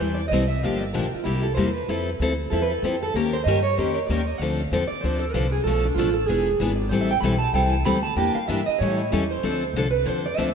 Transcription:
0.00 E2 E3 G3 C4 E4 A4 C5
0.14 D5
0.28 C2 E3 D#5
0.33 G3 C4 E4 A4
0.48 E5
0.63 G1 D3 F3 A#3 D4 G4 F5
0.80 D5
0.93 A#1 D3 F3 A#3 D4 G4 A#4
1.02 G4
1.14 F4, muted upright bass stroke
1.24 C2 C3 G3 A#3 E4 G4
1.43 A4
1.55 E2 C3 G3 A#3 E4 G4 C5
1.74 B4
1.88 F2 F3 C4 E4 A4
2.19 D2 F3 C4 E4 A4
2.50 E2 F3 C4 E4 A4
2.62 B4
2.71 A4
2.82 F2 F3 C4 E4 G4 A4
3.03 A4
3.14 D#2 D#3 A#3 C#4 G4 A#4
3.33 C5
3.44 G2 D#3 A#3 D#5
3.48 C#4 G4 A#4
3.63 C#5
3.77 F2 D#3 A#3 C#4 G4 A#4 C5
3.94 C#5
4.07 D#2 D#3 A#3 C#4 G4 D5
4.12 A#4
4.27 D#5
4.38 D2 D3 F3 C4 D4 F5
4.42 A4
4.71 E2 D3 F3 C4 D4 A4
4.88 D5, muted upright bass stroke
5.01 D2 D3 F3 C4 D4 C5
5.05 A4
5.19 A4
5.32 C2 D3 F3 C4 D4 A4 B4
5.52 G#4
5.64 B1 B2 F3 A3 D4 A4
5.85 D4
5.95 A1 B2 F3 A3 F4
5.99 D4 A4
6.14 A4
6.26 E1 E3 B3 D4 G#4
6.60 G#1 E3 B3 D4 G#4
6.76 D5
6.89 A1 E3 G3 C4 E4 A4 C5
7.01 E5
7.11 G5
7.21 B1 E3 G3 C4 E4 A4 B5
7.39 A5
7.53 C2 E3 G3 C4 E4 A4 G5
7.72 A5
7.85 D2 E3 G3 C4 E4 A4 B5
8.03 A5
8.16 E2 E3 A#3 D4 G4 G5
8.35 F5, muted upright bass stroke
8.48 G2 E3 A#3 D4 G4 E5
8.66 D#5, muted upright bass stroke
8.79 A2 E3 G3 C#4 E4 A4 C#5
8.97 E4
9.10 E2 E3 G3 C#4 E4 G4 A4
9.31 C5
9.43 D2 D3 F3 C4 D4 A4
9.73 C2 D3 F3 C4 D4
9.78 A4
9.91 B4
10.05 F2 D3 F3 C4 D4 A4 C5
10.26 D5
10.37 D2 D3 F3 C4 D4 A4 E5

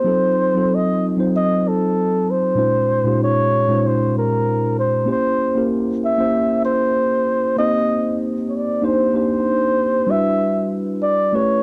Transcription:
Already playing: C5
0.04 F#3 C4 D#4 F4 A4
0.54 F#3 C4 D#4 F4 A4
0.75 D#5
1.17 F#3 C4 D#4 F4 C5
1.36 D#5
1.68 A4
2.30 C5
2.55 A#2 G#3 C#4 D#4 F4 C5
3.04 A#2 G#3 C#4 D#4 F4 G4
3.24 C#5
3.68 A#2 G#3 C#4 D#4 F4 C5
3.86 C5
4.18 A#4
4.79 C5
5.05 A#3 C#4 E4 G4 C5
5.11 C5
5.55 A#3 C#4 E4 G4 A#4
6.05 E5
6.17 A#3 C#4 E4 G4 C5
6.65 C5
7.56 A#3 C4 D#4 G4 C5 D#5
8.49 C#5
8.56 D5
8.81 A#3 D4 D#4 G4 C5
9.13 A#3 D4 D#4 G4 C5
9.17 C5
10.06 G3 D4 E4 F#4 B4
10.11 E5
11.02 D5
11.32 A3 C#4 E4 G4 B4 C#5

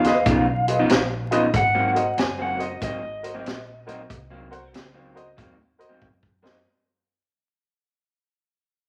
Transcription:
Already playing: D#2 F5
0.04 F4 G#4 B4 D#5, snare, closed hi-hat
0.15 muted clean electric guitar stroke
0.26 B1 C#3 F3 B3 D#4, kick, closed hi-hat
0.48 muted clean electric guitar stroke
0.68 F4 G#4 B4 D#5, closed hi-hat
0.79 C#3 F3 B3 D#4
0.89 A#1, snare, closed hi-hat
1.31 C#3 F3 B3 D#4 F4 G#4 B4 D#5, closed hi-hat
1.54 G#1 F#5, kick, closed hi-hat
1.75 G#2 F#3 A#3 C4
1.94 F#4 A#4 C5 D#5, closed hi-hat
2.17 F#1 G#5, muted clean electric guitar stroke, snare, closed hi-hat
2.39 G#2 F#3 A#3 C4 F#5
2.57 F#4 A#4 C5 D#5, closed hi-hat
2.63 D#5
2.71 muted clean electric guitar stroke
2.81 G#1 G#2 F#3 A#3 C4 D#5, kick, closed hi-hat
3.03 muted clean electric guitar stroke
3.23 F#4 A#4 C5 D#5, closed hi-hat
3.34 G#2 F#3 A#3 C4
3.46 A#1, snare, closed hi-hat
3.86 G#2 F#3 A#3 C4 F#4 A#4 C5 D#5, closed hi-hat
4.10 C2, kick, closed hi-hat
4.30 G#2 F#3 A#3 C4
4.51 F#4 A#4 C5 F#5, closed hi-hat
4.73 C#2, muted clean electric guitar stroke, snare, closed hi-hat
4.94 G#2 F#3 A#3 C4
5.15 F#4 A#4 C5 D#5, closed hi-hat
5.26 muted clean electric guitar stroke
5.37 D#2 G#2 F#3 A#3 C4, kick, closed hi-hat
5.57 muted clean electric guitar stroke
5.78 F#4 A#4 C5 D#5, closed hi-hat
5.89 G#2 F#3 A#3 C4
6.02 F#2, kick
6.23 kick
6.42 G#2 F#3 A#3 C4 F#4 A#4 C5 D#5, snare

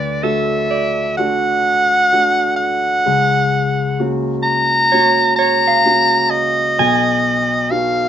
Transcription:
Already playing: D2 D3 B4 D5
0.23 A3 D4 F#4 A4 E5
0.71 D5
1.17 A3 D4 F#4 F#5
2.12 A3 D4 F#4
2.57 F#5
3.06 C#2 C#3
3.99 A#3 C#4 F#4
4.43 A#5
4.92 A#3 C#4 F#4 C#5
5.36 C#5 A#5
5.67 F5
5.85 A#3 C#4 F#4
6.30 D#5
6.78 B1 B2 G#5
7.71 B3 D#4 F#4 F5

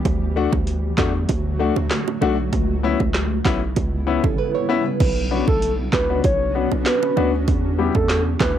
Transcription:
0.05 D2 D3 F#3 A3 F#4, kick, closed hi-hat, high bongo
0.36 A3 D4 F#4
0.53 D2, kick, high bongo
0.67 closed hi-hat
0.98 E2 A3 D4 F#4, kick, snare, clap, low bongo
1.29 D2, kick, closed hi-hat, high bongo
1.59 A3 D4 F#4
1.76 D2, high bongo
1.91 snare, clap, closed hi-hat
2.08 high bongo
2.21 B1 A3 D4 F#4, low bongo
2.53 C#2 C#3 G3 B3 E4, kick, closed hi-hat, high bongo
2.83 B3 C#4 E4
3.00 C#2, kick, high bongo
3.14 snare, clap, closed hi-hat
3.45 B1 B3 C#4 E4, kick, snare, clap, low bongo
3.76 C#2, kick, closed hi-hat, high bongo
4.07 B3 C#4 E4
4.24 A1 C#4 A4, kick, high bongo
4.38 B4
4.55 E4 C#5
4.69 B3 C#4 E4
4.85 B4
5.00 B1 B3 C#4 D4 F#4, kick, closed hi-hat, crash, high bongo
5.31 B3 C#4 D4 F#4
5.47 B1 A4, kick, high bongo
5.62 closed hi-hat
5.93 C#2 D4 E4 B4, kick, snare, clap, low bongo
6.09 B3 C#4 D4 F#4
6.24 B1 C#5, kick, closed hi-hat, high bongo
6.55 B3 C#4 D4 F#4
6.71 B1, high bongo
6.86 B4, snare, clap, closed hi-hat
7.03 high bongo
7.16 D2 B3 C#4 D4 F#4, low bongo
7.48 E2 E3 G3 B3 G4, kick, closed hi-hat, high bongo
7.78 G3 B3 E4 G4
7.95 E2 A4, kick, high bongo
8.09 snare, clap, closed hi-hat
8.40 D2 E4 G4 B4, kick, snare, clap, low bongo

